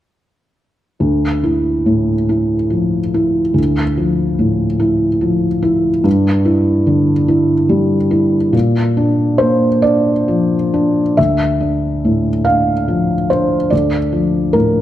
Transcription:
1.00 3.52 D2 soft
1.44 2.13 E4 soft
1.86 2.56 A2 soft
2.29 2.98 E4 soft
2.70 3.39 F3 soft
3.14 3.82 E4 soft
3.54 6.00 D2 soft
3.97 4.65 F3 soft
4.39 5.06 A2 soft
4.80 5.47 E4 soft
5.21 5.88 F3 soft
5.63 6.04 E4 soft
6.04 8.49 G2 medium
6.45 7.11 E4 soft
6.87 7.53 D3 soft
7.28 7.95 E4 soft
7.69 8.37 G3 soft
8.11 8.53 E4 soft
8.53 11.13 A#2 medium
8.97 9.67 D4 soft
9.38 10.10 A#3 soft
9.38 9.83 C5 medium
9.82 10.55 D4 soft
9.82 11.17 D5 medium
10.28 11.00 F3 soft
10.74 11.18 D4 soft
11.17 13.68 D2 soft
11.17 12.46 E5 medium
11.61 12.29 D4 soft
12.05 12.72 A2 soft
12.45 13.13 D4 soft
12.45 13.29 F5 medium
12.88 13.55 F3 soft
13.30 13.97 D4 soft
13.30 13.72 C5 medium
13.70 14.81 D2 soft
13.70 14.54 D5 soft
14.13 14.80 F3 soft
14.53 14.81 A2 soft
14.53 14.81 A#4 medium

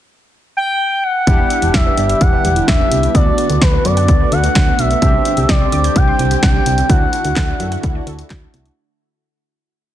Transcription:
0.57 1.05 G5 loud
1.04 1.76 F#5 loud
1.27 1.44 E1 loud
1.27 4.98 D3 medium
1.27 3.13 G3 medium
1.27 1.37 G3 medium
1.27 4.98 B3 medium
1.27 3.11 D4 medium
1.27 3.13 E4 medium
1.27 3.11 E4 medium
1.27 3.11 G4 medium
1.27 kick loud
1.27 closed hi-hat medium
1.39 1.49 B3 medium
1.50 1.60 D4 medium
1.50 closed hi-hat medium
1.62 1.71 E1 medium
1.62 1.72 E4 medium
1.62 closed hi-hat medium
1.74 1.90 E1 loud
1.74 1.84 G4 medium
1.74 2.22 E5 loud
1.74 kick loud
1.74 snare loud
1.74 closed hi-hat medium
1.86 1.96 B4 medium
1.97 2.14 G1 medium
1.97 2.07 D5 medium
1.97 closed hi-hat medium
2.09 2.19 E5 medium
2.09 closed hi-hat medium
2.21 2.37 E1 medium
2.21 2.67 F#5 loud
2.21 kick loud
2.21 closed hi-hat medium
2.33 2.42 B4 medium
2.44 2.61 E1 loud
2.44 2.54 G4 medium
2.44 closed hi-hat medium
2.56 2.66 E4 medium
2.56 closed hi-hat medium
2.68 2.84 E1 loud
2.68 2.78 D4 medium
2.68 3.16 E5 loud
2.68 kick loud
2.68 snare loud
2.68 closed hi-hat medium
2.80 2.89 B3 medium
2.91 3.08 C2 loud
2.91 3.01 G3 medium
2.91 closed hi-hat medium
3.03 3.13 B3 medium
3.03 closed hi-hat soft
3.15 3.31 D2 loud
3.15 5.00 A3 medium
3.15 3.25 A3 medium
3.15 4.98 B3 medium
3.15 4.98 D4 medium
3.15 5.00 F#4 medium
3.15 4.98 F#4 medium
3.15 3.63 D5 loud
3.15 kick loud
3.15 closed hi-hat medium
3.27 3.36 B3 medium
3.38 3.48 D4 medium
3.38 closed hi-hat medium
3.50 3.58 D2 loud
3.50 3.60 F#4 medium
3.50 closed hi-hat medium
3.61 3.78 D2 loud
3.61 3.71 A4 medium
3.61 3.87 B4 medium
3.61 kick loud
3.61 snare loud
3.61 closed hi-hat medium
3.73 3.83 B4 medium
3.85 4.10 F#2 loud
3.85 3.95 D5 medium
3.85 4.34 D5 loud
3.85 closed hi-hat medium
3.97 4.07 F#5 medium
3.97 closed hi-hat medium
4.08 4.25 D2 loud
4.08 kick loud
4.08 closed hi-hat medium
4.20 4.30 B4 medium
4.32 4.48 D2 loud
4.32 4.42 A4 medium
4.32 4.80 F#5 loud
4.32 closed hi-hat medium
4.44 4.53 F#4 medium
4.44 closed hi-hat medium
4.55 4.72 D2 loud
4.55 4.65 D4 medium
4.55 kick loud
4.55 snare loud
4.55 closed hi-hat medium
4.67 4.77 B3 medium
4.79 4.95 B1 medium
4.79 4.89 A3 medium
4.79 5.51 E5 loud
4.79 closed hi-hat medium
4.91 5.00 B3 medium
4.91 closed hi-hat soft
5.02 5.19 C2 loud
5.02 8.74 D3 medium
5.02 6.88 G3 medium
5.02 5.12 G3 medium
5.02 6.86 C4 medium
5.02 6.88 C4 medium
5.02 6.86 D4 medium
5.02 6.86 G4 medium
5.02 6.88 G4 medium
5.02 kick loud
5.02 closed hi-hat medium
5.14 5.24 C4 medium
5.25 5.35 D4 medium
5.25 closed hi-hat medium
5.37 5.46 C2 medium
5.37 5.47 G4 medium
5.37 closed hi-hat medium
5.49 5.65 C2 loud
5.49 5.97 D5 loud
5.49 5.59 G5 medium
5.49 kick loud
5.49 snare loud
5.49 closed hi-hat medium
5.61 5.70 C6 medium
5.72 5.89 D2 medium
5.72 5.82 D6 medium
5.72 closed hi-hat medium
5.84 5.94 G6 medium
5.84 closed hi-hat medium
5.96 6.12 C2 loud
5.96 6.42 G5 loud
5.96 kick loud
5.96 closed hi-hat medium
6.08 6.17 C6 medium
6.19 6.36 C2 loud
6.19 6.29 G5 medium
6.19 closed hi-hat medium
6.31 6.41 G4 medium
6.31 closed hi-hat medium
6.43 6.59 C2 loud
6.43 6.53 D4 medium
6.43 6.91 G5 loud
6.43 kick loud
6.43 snare loud
6.43 closed hi-hat medium
6.54 6.64 C4 medium
6.66 6.83 C2 loud
6.66 6.76 G3 medium
6.66 closed hi-hat medium
6.78 6.88 C4 medium
6.78 closed hi-hat soft
6.90 7.06 D2 loud
6.90 8.75 A3 medium
6.90 7.00 A3 medium
6.90 8.73 D4 medium
6.90 8.75 E4 medium
6.90 8.73 E4 medium
6.90 8.73 F#4 medium
6.90 8.75 F#4 medium
6.90 8.30 F#5 loud
6.90 kick loud
6.90 closed hi-hat medium
7.01 7.11 D4 medium
7.13 7.23 E4 medium
7.13 closed hi-hat medium
7.25 7.33 D2 loud
7.25 7.35 F#4 medium
7.25 closed hi-hat medium
7.36 7.53 D2 loud
7.36 7.46 A4 medium
7.36 kick loud
7.36 snare loud
7.36 clap loud
7.36 closed hi-hat medium
7.48 7.58 D5 medium
7.60 7.76 F#2 medium
7.60 7.70 E5 medium
7.60 closed hi-hat medium
7.72 7.81 F#5 medium
7.72 closed hi-hat medium
7.83 8.00 D2 loud
7.83 kick loud
7.83 closed hi-hat medium
7.95 8.05 D5 medium
8.07 8.23 D2 medium
8.07 8.17 A4 medium
8.07 closed hi-hat medium
8.19 8.28 F#4 medium
8.19 closed hi-hat medium
8.30 8.47 D2 loud
8.30 8.40 E4 medium
8.30 kick loud
8.30 snare loud
8.30 clap loud
8.30 closed hi-hat medium
8.42 8.52 D4 medium
8.54 8.70 C2 loud
8.54 8.64 A3 medium
8.54 closed hi-hat medium
8.66 8.75 D4 medium
8.66 closed hi-hat soft

